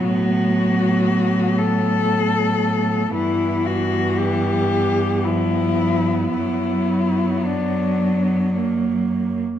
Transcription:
X:1
M:3/4
L:1/8
Q:1/4=56
K:Bm
V:1 name="Cello"
F3 A3 | E F G2 E2 | E2 D2 z2 |]
V:2 name="Cello"
B,6 | B,6- | B,4 ^A,2 |]
V:3 name="Cello" clef=bass
F,6 | E,4 =F,2 | F,6 |]
V:4 name="Cello" clef=bass
A,,6 | G,,6 | F,,6 |]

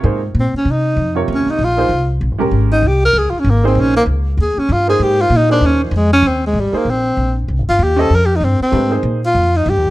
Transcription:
X:1
M:4/4
L:1/8
Q:"Swing" 1/4=193
K:Ebmix
V:1 name="Upright piano"
[C,B,EFABcd] z6 [C,FBd]- | [C,FBd]2 z [B,EAc] z3 [A,DGB]- | [A,DGB]2 z4 z [B,EAc]- | [B,EAc]2 z4 z [B,EAc]- |
[B,EAc]2 z [B,EAc]3 z2 | [K:Ab] z3 [B,EAc] z4 | z3 [DGce] z4 | [=A,=DG_c] [B,E_A=c]2 z4 z |]
V:2 name="Tenor saxophone"
z2 C D E3 z | D E F3 z3 | z E G B (3A F D B, C | D B, z2 A D F A |
G F E =D _D F, A, D | [K:Ab] C A, G, B, C3 z | z F G =A (3B G E C C- | C2 z F2 E G2 |]
V:3 name="Upright bass" clef=bass
A,,2 B,, z C,2 F,,2 | E,, z B,,,2 C,,2 (3B,,, A,,, E,,, | A,,,2 C,,2 D,, z A,,,2 | B,,,2 D,,2 E,, z G,,2 |
A,,2 B,,2 E,,2 F,,2 | [K:Ab] E,,2 A,,, z B,,,2 B,,,2 | (3C,, A,,, G,,, E,,2 F,,2 G,, z | A,,2 B,,2 F,,2 (3G,, E,, C,, |]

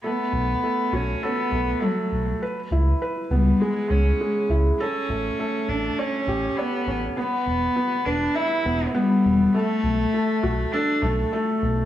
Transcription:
X:1
M:4/4
L:1/16
Q:1/4=101
K:Bm
V:1 name="Cello"
B,6 C2 B,4 F,3 z | z6 G,2 ^G,2 C4 z2 | C6 D2 C4 B,3 z | B,6 D2 E4 G,4 |
A,8 D2 A,4 z2 |]
V:2 name="Felt piano"
A,2 z2 A,2 F2 A2 A,2 A,2 z2 | B2 E2 B2 B,2 ^G,2 z2 G,2 E2 | A2 A,2 A,2 z2 c2 G2 c2 C2 | B,2 z2 B,2 B2 e2 B,2 B,2 z2 |
A,2 z2 A,2 F2 A2 A,2 A,2 z2 |]
V:3 name="Analog synth bass" clef=bass
z2 B,,,2 z2 B,,,2 z2 B,,,2 z2 B,,,2 | z2 C,,2 z2 C,,2 z2 C,,2 z2 C,,2 | z2 A,,,2 z2 A,,,2 z2 A,,,2 z2 A,,,2 | z2 E,,,2 z2 E,,,2 z2 E,,,2 z2 E,,,2 |
z2 B,,,2 z2 B,,,2 z2 B,,,2 z2 B,,,2 |]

